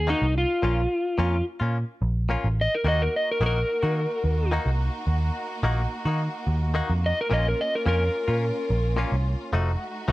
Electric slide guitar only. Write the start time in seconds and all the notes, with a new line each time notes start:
0.10 D#4
0.38 F4
2.61 D#5
2.75 A#4
2.88 D#5
3.02 A#4
3.16 D#5
3.31 A#4
3.46 A#4
7.06 D#5
7.21 A#4
7.34 D#5
7.48 A#4
7.61 D#5
7.75 A#4
7.88 A#4